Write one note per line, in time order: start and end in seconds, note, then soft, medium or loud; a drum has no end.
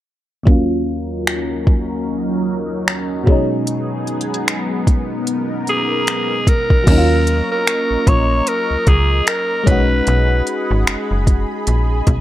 0.43 3.21 D#2 medium
0.43 3.22 F#3 medium
0.43 6.83 F#3 medium
0.43 3.24 C#4 medium
0.43 6.83 D#4 medium
0.43 3.24 A#4 medium
0.43 kick loud
0.48 3.23 A#3 medium
0.48 3.24 C#4 medium
0.48 3.25 F4 medium
1.27 finger snap loud
1.67 kick medium
2.88 finger snap loud
3.24 6.41 B2 medium
3.24 6.42 F#3 medium
3.24 6.84 B3 medium
3.24 4.86 G#4 medium
3.24 kick loud
3.28 6.43 G#3 medium
3.28 6.44 C#4 medium
3.28 6.45 D#4 medium
3.67 closed hi-hat medium
4.07 closed hi-hat soft
4.21 closed hi-hat soft
4.34 closed hi-hat medium
4.48 finger snap loud
4.48 closed hi-hat medium
4.87 6.85 A#4 medium
4.87 kick medium
4.87 closed hi-hat medium
5.27 closed hi-hat medium
5.67 6.50 G#4 medium
5.67 closed hi-hat soft
6.07 finger snap loud
6.07 closed hi-hat medium
6.47 7.51 A#4 medium
6.47 kick medium
6.47 closed hi-hat medium
6.70 kick medium
6.83 7.42 D#2 loud
6.83 9.61 F#3 medium
6.83 9.63 A#3 medium
6.83 9.64 A#4 medium
6.83 12.21 D#5 medium
6.83 9.64 A#5 medium
6.83 9.64 C#6 medium
6.83 kick loud
6.83 closed hi-hat medium
6.83 crash medium
6.89 9.64 C#4 medium
6.89 6.97 D#4 medium
6.98 9.68 F4 medium
7.27 closed hi-hat medium
7.52 8.10 A#4 medium
7.67 finger snap loud
7.67 closed hi-hat medium
7.91 7.97 A#1 soft
8.07 8.42 A#1 medium
8.07 8.50 C#5 loud
8.07 kick medium
8.07 closed hi-hat medium
8.47 8.90 A#4 medium
8.47 closed hi-hat medium
8.71 8.77 C#2 soft
8.87 9.22 C#2 loud
8.87 9.29 G#4 medium
8.87 kick medium
8.87 closed hi-hat soft
9.27 9.70 A#4 medium
9.27 finger snap loud
9.27 closed hi-hat medium
9.64 10.02 B1 medium
9.64 12.21 G#3 medium
9.64 12.21 C#4 medium
9.64 kick loud
9.64 closed hi-hat medium
9.68 12.21 D#4 medium
9.68 12.21 F#4 medium
9.68 12.21 G#4 medium
9.68 10.48 B4 medium
9.68 11.26 F#5 medium
9.68 12.21 B5 medium
10.07 10.42 B1 loud
10.07 closed hi-hat medium
10.47 closed hi-hat medium
10.71 10.85 G#1 medium
10.87 finger snap loud
10.87 closed hi-hat medium
11.11 11.46 F#1 medium
11.27 12.21 G#5 medium
11.27 kick medium
11.27 closed hi-hat medium
11.67 12.02 A#1 medium
11.67 closed hi-hat medium
12.07 12.21 B1 medium
12.07 kick medium
12.07 closed hi-hat medium